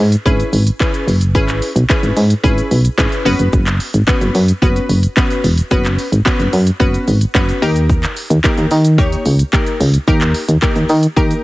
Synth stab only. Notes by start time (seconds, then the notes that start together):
0.25 C#4 E4 G#4 B4
0.80 C#4 E4 G#4 B4
1.35 C#4 E4 G#4 B4
1.89 C#4 E4 G#4 B4
2.43 C#4 E4 G#4 B4
2.98 C#4 E4 G#4 B4
3.25 B3 C#4 F#4 B4
4.07 B3 C#4 F#4 B4
4.62 B3 C#4 F#4 B4
5.17 B3 C#4 F#4 B4
5.71 B3 C#4 F#4 B4
6.25 B3 C#4 F#4 B4
6.80 B3 C#4 F#4 B4
7.34 B3 C#4 F#4 B4
7.62 A#3 D#4 G4 A#4
8.44 A#3 D#4 G4 A#4
8.98 A#3 D#4 G4 C#5
9.53 A#3 D#4 G4 A#4
10.07 A#3 D#4 G4 A#4
10.62 A#3 D#4 G4 A#4
11.16 A#3 D#4 G4 A#4